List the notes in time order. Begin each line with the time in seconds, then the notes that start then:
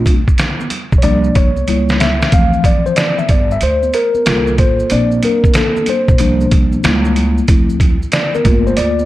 Already playing: A3 C4 D4 F4
0.06 kick, closed hi-hat, high conga, low conga, maracas
0.28 kick, maracas
0.38 snare, closed hi-hat, maracas
0.60 high conga, maracas
0.70 closed hi-hat, low conga, maracas
0.92 A#1, kick, maracas
0.98 C#5, closed hi-hat
1.03 C2 F3 A#3 D4 D5, high conga, maracas
1.24 maracas
1.35 C2 C#5, kick, closed hi-hat, maracas
1.57 high conga, maracas
1.68 C#2 G3 A#3 E4, closed hi-hat, maracas
1.89 snare, maracas
2.00 E5, snare, closed hi-hat, low conga, maracas
2.22 snare, maracas
2.32 D2 E3 F3 C4 F5, kick, closed hi-hat, maracas
2.53 maracas
2.64 D5, kick, closed hi-hat, low conga, maracas
2.86 C5, maracas
2.96 D5, snare, closed hi-hat, maracas
3.19 E5, high conga, maracas
3.29 G1 D5, kick, closed hi-hat, low conga, maracas
3.51 E5, maracas
3.61 D2 C5, closed hi-hat, maracas
3.83 high conga, maracas
3.93 A#4, closed hi-hat, maracas
4.15 high conga, maracas
4.26 C2 A#3 F4 A4, snare, closed hi-hat, maracas
4.47 maracas
4.58 A1 C5, kick, closed hi-hat, low conga, maracas
4.80 maracas
4.90 A#1 A#3 C4 D4 D5, closed hi-hat, maracas
5.11 maracas
5.23 A#4, closed hi-hat, low conga, maracas
5.44 kick, maracas
5.54 A4, snare, closed hi-hat, maracas
5.77 high conga, maracas
5.86 C5, closed hi-hat, low conga, maracas
6.08 A#1, kick, maracas
6.18 C2 F3 A#3 D4, closed hi-hat, maracas
6.41 high conga, maracas
6.51 C2, kick, closed hi-hat, maracas
6.72 high conga, maracas
6.83 C#2 G3 A#3 E4, snare, closed hi-hat, maracas
7.05 maracas
7.16 closed hi-hat, low conga, maracas
7.38 maracas
7.48 D2 F3 C4 E4, kick, closed hi-hat, maracas
7.70 maracas
7.80 kick, closed hi-hat, low conga, maracas
8.03 maracas
8.12 D5, snare, closed hi-hat, maracas
8.35 A#4, high conga, maracas
8.45 G1 A3 A#3 F4, kick, closed hi-hat, low conga, maracas
8.67 C5, maracas
8.77 D2 D5, closed hi-hat, maracas
8.99 high conga, maracas